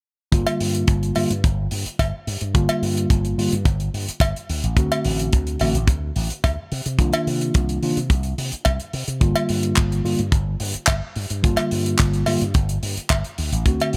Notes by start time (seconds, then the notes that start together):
0.32 G1 D3 G3 A#3 F4, kick, closed hi-hat
0.47 closed hi-hat, cowbell
0.60 G2, open hi-hat
0.75 closed hi-hat
0.88 G1, kick, closed hi-hat
1.03 closed hi-hat
1.15 G2 D3 G3 A#3 F4, open hi-hat, cowbell
1.30 G2, closed hi-hat
1.44 G1, kick, closed hi-hat
1.71 G2, open hi-hat
1.86 muted slap bass stroke, closed hi-hat
1.99 G1, kick, closed hi-hat, cowbell
2.27 G2, open hi-hat
2.41 G2, closed hi-hat
2.54 G1 D3 G3 A#3 F4, kick, closed hi-hat
2.69 closed hi-hat, cowbell
2.82 G2, open hi-hat
2.97 closed hi-hat
3.10 G1, kick, closed hi-hat
3.25 closed hi-hat
3.38 G2 D3 G3 A#3 F4, open hi-hat
3.52 G2, closed hi-hat
3.65 G1, kick, closed hi-hat
3.80 closed hi-hat
3.94 G2, open hi-hat
4.08 muted slap bass stroke, closed hi-hat
4.20 G1, kick, closed hi-hat, cowbell
4.36 closed hi-hat
4.49 D2, open hi-hat
4.64 A1, closed hi-hat
4.76 D2 D3 A3 C4 F#4, kick, closed hi-hat
4.92 closed hi-hat, cowbell
5.05 A1, open hi-hat
5.19 closed hi-hat
5.33 D2, kick, closed hi-hat
5.47 closed hi-hat
5.59 A1 D3 A3 C4 F#4, open hi-hat, cowbell
5.75 A1, closed hi-hat
5.88 D2, kick, closed hi-hat
6.16 A1, open hi-hat
6.30 closed hi-hat
6.44 D2, kick, closed hi-hat, cowbell
6.72 C3, open hi-hat
6.86 C3, closed hi-hat
6.99 C2 D#3 A#3 D4 F4, kick, closed hi-hat
7.13 closed hi-hat, cowbell
7.27 C3, open hi-hat
7.41 closed hi-hat
7.54 C2, kick, closed hi-hat
7.69 closed hi-hat
7.82 C3 D#3 A#3 D4 F4, open hi-hat
7.97 C3, closed hi-hat
8.10 C2, kick, closed hi-hat
8.23 closed hi-hat
8.38 C3, open hi-hat
8.52 muted slap bass stroke, closed hi-hat
8.65 C2, kick, closed hi-hat, cowbell
8.80 closed hi-hat
8.93 C3, open hi-hat
9.07 C3, closed hi-hat
9.20 G1 D3 G3 A#3 F4, kick, closed hi-hat
9.36 closed hi-hat, cowbell
9.49 G2, open hi-hat
9.63 closed hi-hat
9.76 G1, kick, clap, closed hi-hat
9.92 closed hi-hat
10.04 G2 D3 G3 A#3 F4, open hi-hat
10.19 G2, closed hi-hat
10.32 G1, kick, closed hi-hat
10.60 G2, open hi-hat
10.74 muted slap bass stroke, closed hi-hat
10.87 G1, kick, clap, closed hi-hat, cowbell
11.16 G2, open hi-hat
11.30 G2, closed hi-hat
11.43 G1 D3 G3 A#3 F4, kick, closed hi-hat
11.57 clap, closed hi-hat, cowbell
11.71 G2, open hi-hat
11.86 closed hi-hat
11.98 G1, kick, clap, closed hi-hat
12.13 closed hi-hat
12.26 G2 D3 G3 A#3 F4, open hi-hat, cowbell
12.41 G2, closed hi-hat
12.54 G1, kick, closed hi-hat
12.69 closed hi-hat
12.83 G2, open hi-hat
12.97 muted slap bass stroke, closed hi-hat
13.10 G1, kick, clap, closed hi-hat, cowbell
13.24 closed hi-hat
13.38 D2, open hi-hat
13.52 A1, closed hi-hat
13.65 D2 D3 A3 C4 F#4, kick, closed hi-hat
13.80 closed hi-hat, cowbell
13.93 A1, open hi-hat